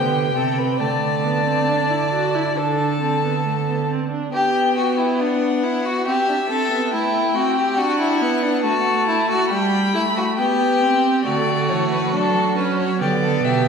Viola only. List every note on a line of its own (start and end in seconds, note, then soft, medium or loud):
0.00 0.34 B3 medium
0.35 0.81 C4 medium
0.80 1.25 A3 medium
1.24 1.45 B3 medium
1.45 1.70 C4 medium
1.69 1.91 D4 medium
1.90 2.12 E4 medium
2.12 2.36 F#4 medium
2.35 2.56 E4 medium
2.57 3.00 D4 medium
3.01 3.22 C4 medium
3.24 3.45 B3 medium
3.45 3.53 A3 medium
3.67 3.89 B3 medium
3.90 4.10 C4 medium
4.11 4.32 D4 medium
4.33 6.02 B3 medium
6.07 6.15 C4 medium
6.28 6.36 D4 medium
6.50 6.71 C4 medium
6.71 6.94 B3 medium
6.93 7.35 A3 medium
7.36 7.78 C4 medium
7.78 8.23 D4 medium
8.21 8.65 B3 medium
8.63 9.52 A3 medium
9.51 9.95 G3 medium
9.93 10.39 A3 medium
10.38 10.83 B3 medium
10.82 11.26 C4 medium
11.26 12.15 A3 medium
12.13 12.57 D4 medium
12.57 13.00 C#4 medium
13.01 13.68 B3 medium